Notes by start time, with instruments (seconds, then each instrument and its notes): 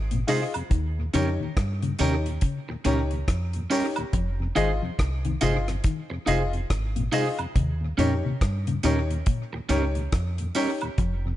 Already playing: fingered electric bass G#1
0.11 tonewheel organ F2 C3, clean electric guitar A#2, closed hi-hat
0.27 clean electric guitar C3 D#4 G#4 C5, tonewheel organ G#3 D#4 F4, grand piano F4 G#4 D#5, open hi-hat, tambourine
0.54 tonewheel organ F2 C3, closed hi-hat, high woodblock
0.70 fingered electric bass D#2, clean electric guitar D#3, kick, closed hi-hat
0.99 tonewheel organ D#2 A#2
1.13 fingered electric bass F2, clean electric guitar C#3 C#4 G4 A#4, tonewheel organ G3 C#4 D#4, grand piano D#4 G4 C#5, closed hi-hat, tambourine
1.40 tonewheel organ D#2 A#2, clean electric guitar D#3
1.57 fingered electric bass G2, kick, cross-stick, closed hi-hat
1.82 tonewheel organ D#2 A#2, clean electric guitar C#3, closed hi-hat
1.99 fingered electric bass D#2, clean electric guitar C3 C#4 G4 A#4, tonewheel organ G3 C#4 D#4, grand piano D#4 G4 C#5, closed hi-hat, tambourine
2.25 tonewheel organ D#2 A#2, closed hi-hat
2.41 clean electric guitar C#3, kick, closed hi-hat
2.69 tonewheel organ D#2 A#2, muted clean electric guitar stroke
2.85 fingered electric bass C#2, clean electric guitar A#2 C#4 G4 A#4, tonewheel organ G3 C#4 D#4, grand piano D#4 G4 C#5, closed hi-hat, tambourine
3.11 tonewheel organ D#2 A#2, closed hi-hat
3.28 fingered electric bass F2, kick, cross-stick, closed hi-hat
3.53 tonewheel organ D#2 A#2, closed hi-hat
3.70 tonewheel organ G3 C#4 D#4, clean electric guitar C#4 G4 A#4, grand piano D#4 G4 C#5, open hi-hat, tambourine
3.96 tonewheel organ D#2 A#2, grand piano G4 C#5, closed hi-hat, high woodblock
4.13 fingered electric bass F1, clean electric guitar F3, kick, closed hi-hat
4.40 tonewheel organ F2 C3
4.55 fingered electric bass G#1, clean electric guitar D#3 D#4 G#4 C5, tonewheel organ G#3 D#4 F4, grand piano F4 G#4 D#5, closed hi-hat, tambourine
4.82 tonewheel organ F2 C3, clean electric guitar F3
4.99 fingered electric bass C2, kick, cross-stick, closed hi-hat
5.25 tonewheel organ F2 C3, clean electric guitar D#3, closed hi-hat
5.41 fingered electric bass G1, clean electric guitar C3 D#4 G#4 C5, tonewheel organ G#3 D#4 F4, grand piano F4 G#4 D#5, closed hi-hat, tambourine
5.68 tonewheel organ F2 C3, cross-stick, closed hi-hat
5.84 clean electric guitar D#3, kick, closed hi-hat
6.10 tonewheel organ F2 C3, muted clean electric guitar stroke
6.26 fingered electric bass F1, clean electric guitar C3 D#4 G#4 C5, tonewheel organ G#3 D#4 F4, grand piano F4 G#4 D#5, closed hi-hat, tambourine
6.53 tonewheel organ F2 C3, closed hi-hat
6.70 fingered electric bass G#1, kick, cross-stick, closed hi-hat
6.95 tonewheel organ F2 C3, clean electric guitar A#2, closed hi-hat
7.12 clean electric guitar C3 D#4 G#4 C5, tonewheel organ G#3 D#4 F4, grand piano F4 G#4 D#5, open hi-hat, tambourine
7.39 tonewheel organ F2 C3, closed hi-hat, high woodblock
7.55 fingered electric bass D#2, clean electric guitar C3, kick, closed hi-hat
7.81 tonewheel organ D#2 A#2
7.98 fingered electric bass F2, clean electric guitar A#2 C#4 G4 A#4, tonewheel organ G3 C#4 D#4, grand piano D#4 G4 C#5, closed hi-hat, tambourine
8.25 tonewheel organ D#2 A#2, clean electric guitar C3
8.41 fingered electric bass G2, kick, cross-stick, closed hi-hat
8.67 tonewheel organ D#2 A#2, clean electric guitar C#3, closed hi-hat
8.83 fingered electric bass D#2, clean electric guitar A#2 C#4 G4 A#4, tonewheel organ G3 C#4 D#4, grand piano D#4 G4 C#5, cross-stick, closed hi-hat, tambourine
9.10 tonewheel organ D#2 A#2, closed hi-hat
9.26 clean electric guitar A#2, kick, closed hi-hat
9.53 tonewheel organ D#2 A#2, muted clean electric guitar stroke
9.69 fingered electric bass C#2, clean electric guitar G2 C#4 G4 A#4, tonewheel organ G3 C#4 D#4, grand piano D#4 G4 C#5, closed hi-hat, tambourine
9.95 tonewheel organ D#2 A#2, closed hi-hat
10.12 fingered electric bass F2, kick, cross-stick, closed hi-hat
10.38 tonewheel organ D#2 A#2, closed hi-hat
10.55 tonewheel organ G3 C#4 D#4, clean electric guitar C#4 G4 A#4, grand piano D#4 G4 C#5, open hi-hat, tambourine
10.81 tonewheel organ D#2 A#2, closed hi-hat, high woodblock
10.98 fingered electric bass F1, clean electric guitar F3, kick, closed hi-hat
11.26 tonewheel organ F2 C3